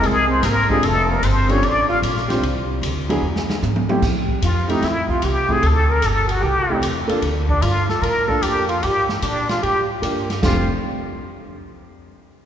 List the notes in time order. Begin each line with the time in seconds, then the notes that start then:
Already playing: G#3 C4 D#4 E4 A#4
0.02 C2 G#3, ride
0.06 G#4
0.28 C4 C5
0.42 G#1 A#3 A#4, snare, hi-hat pedal, ride
0.69 G3 G#3 C4 D4 F4 G#4 A4, kick
0.83 F1 A3 A4, ride
1.10 A#3 A#4
1.22 G1 C4 C5, hi-hat pedal, ride
1.48 G3 C4 C#4 D4 F4 A4 C#5, ride
1.62 A1 D4 D5, ride
1.89 F4 F5
2.02 A#1, hi-hat pedal, ride
2.17 snare
2.28 G3 C4 D4 F4 C5, snare, ride
2.42 C2, ride
2.82 D2, hi-hat pedal, ride
3.09 F#3 B3 D4 E4 G#4, ride
3.22 E2
3.36 snare
3.50 snare
3.62 G#2, hi-hat pedal, high tom
3.76 high tom
3.89 G3 A3 C4 E4 G4, high tom
4.02 A2, kick, snare, crash
4.29 kick
4.42 F2 F4, hi-hat pedal, ride
4.68 A3 C4 D#4 E4 G4, ride
4.82 E2 E4, snare, ride
5.09 F4, muted upright bass stroke, kick
5.22 C2 G4, hi-hat pedal, ride
5.48 A3 C4 E4 G4 G#4, kick
5.62 D2 A4, ride
5.67 A4
5.89 A#4
6.02 G1 A4, hi-hat pedal, ride
6.06 A4
6.27 F#4, ride
6.41 C2 G4
6.69 A3 C4 E4 G4
6.82 E2, hi-hat pedal, ride
7.08 A#3 D4 F4 A4, muted upright bass stroke, ride
7.22 D2, ride
7.49 D4, kick
7.62 G2 F4, hi-hat pedal, ride
7.89 A4, snare
8.02 A2 A#4, ride
8.28 A#3 D4 F4 A4, kick
8.42 F2 G4, hi-hat pedal, ride
8.68 F4, ride
8.83 G2 G4, ride
9.09 A#3, snare
9.22 A#2 D4, hi-hat pedal, ride
9.49 F4, snare, ride
9.62 A2 G4, ride
10.02 G2 A#3 D4 F4 G4, hi-hat pedal, ride
10.30 snare, ride
10.42 F1 F3 A3 C4 D4 F4 G4, kick, snare, crash